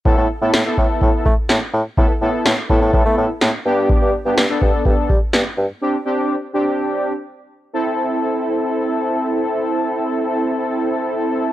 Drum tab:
SD |--o---o-|--o---o-|--o---o-|--------|
BD |o--ooo--|o--oo---|o--ooo--|--------|

SD |--------|--------|
BD |--------|--------|